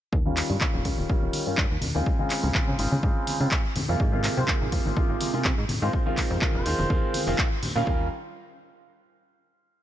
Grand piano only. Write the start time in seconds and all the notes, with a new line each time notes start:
0.25 D#3 G3 C#4 F4
0.61 D#3 G3 F4
0.85 D#3 G3 C#4 F4
1.09 D#3 G3 C#4 F4
1.46 D#3 G3 C#4 F4
1.94 C#3 G#3 C4 F4
2.19 C#3 G#3 C4 F4
2.54 C#3 G#3 C4 F4
2.79 C#3 G#3 C4 F4
3.03 C#3 G#3 C4 F4
3.40 C#3 G#3 C4 F4
3.88 C3 G#3 A#3 F4
4.12 C3 G#3 A#3 F4
4.47 C3 G#3 A#3 F4
4.72 C3 G#3 A#3 F4
4.96 C3 G#3 A#3 F4
5.33 C3 G#3 A#3 F4
5.82 D#3 G#3 C4 F4
6.06 D#3 G#3 C4 F4
6.41 D#3 G#3 C4 F4
6.65 D#3 G#3 C4 F4
6.90 D#3 G#3 C4 F4
7.27 D#3 G#3 C4 F4
7.75 D#3 G3 C#4 F4
7.86 D#3 G3 C#4 F4